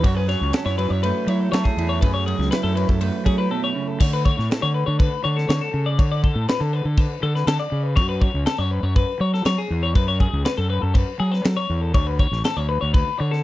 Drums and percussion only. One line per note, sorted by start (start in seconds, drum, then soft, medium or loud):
0.04 kick loud
0.04 ride medium
0.29 snare soft
0.29 ride medium
0.53 snare loud
0.53 ride medium
0.67 snare soft
0.79 ride medium
1.03 ride medium
1.28 ride medium
1.53 snare loud
1.53 ride loud
1.65 kick medium
1.78 ride medium
2.02 kick loud
2.02 ride medium
2.28 ride medium
2.42 snare soft
2.52 snare loud
2.52 ride medium
2.77 ride medium
2.89 kick medium
3.01 ride medium
3.26 kick medium
3.26 ride medium
4.00 kick loud
4.00 crash loud
4.00 crash medium
4.26 kick medium
4.39 snare soft
4.51 snare loud
4.51 crash medium
5.00 kick loud
5.00 crash medium
5.38 snare soft
5.49 snare loud
5.49 crash medium
5.99 kick loud
5.99 crash medium
6.24 kick medium
6.48 snare loud
6.48 crash medium
6.97 kick loud
6.97 crash medium
7.36 snare soft
7.47 snare loud
7.47 crash medium
7.97 kick loud
7.97 crash medium
8.22 kick medium
8.46 snare loud
8.46 crash medium
8.96 kick loud
8.96 crash medium
9.34 snare soft
9.45 snare loud
9.45 crash medium
9.95 kick loud
9.95 crash medium
10.20 kick medium
10.45 snare loud
10.45 crash medium
10.95 kick loud
10.95 crash medium
11.33 snare soft
11.45 snare loud
11.45 crash medium
11.94 kick loud
11.94 crash medium
12.19 kick medium
12.33 snare soft
12.44 snare loud
12.44 crash medium
12.94 kick loud
12.94 crash medium
13.33 snare soft